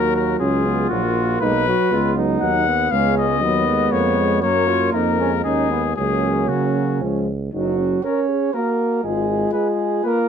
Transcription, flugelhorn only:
0.00 0.39 F#4 medium
0.39 1.44 F4 medium
1.42 1.67 D#4 soft
1.67 1.94 F#4 soft
1.92 2.17 F4 medium
2.17 2.65 D#4 medium
2.93 3.39 C#4 medium
3.42 4.45 B3 medium
4.43 4.70 A#3 soft
4.68 4.96 F4 soft
4.95 5.19 D#4 soft
5.20 5.31 C#4 soft
5.44 5.70 D#4 soft
5.71 5.82 B3 soft
5.95 7.24 C#4 soft
7.53 8.05 F#4 soft
8.03 8.55 C#5 soft
8.53 9.02 A#4 soft
9.03 9.52 G#4 soft
9.52 10.02 G#4 soft
10.05 10.29 A#4 soft

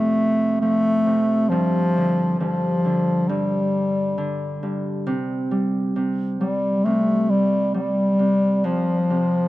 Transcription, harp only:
0.00 1.56 F2 medium
0.00 1.05 C3 medium
0.62 1.12 F3 medium
1.06 1.56 C3 soft
1.52 2.39 G2 medium
1.96 2.84 D3 medium
2.40 3.28 G2 medium
2.85 4.17 D3 medium
3.29 4.62 G2 medium
4.18 5.12 D3 medium
4.63 5.12 G2 soft
5.07 5.95 C3 medium
5.51 6.39 G3 medium
5.96 6.84 C3 medium
6.41 7.73 G3 medium
6.85 8.18 C3 medium
7.74 8.69 G3 medium
8.19 8.69 C3 soft
8.64 9.48 F2 medium
9.10 9.48 C3 medium

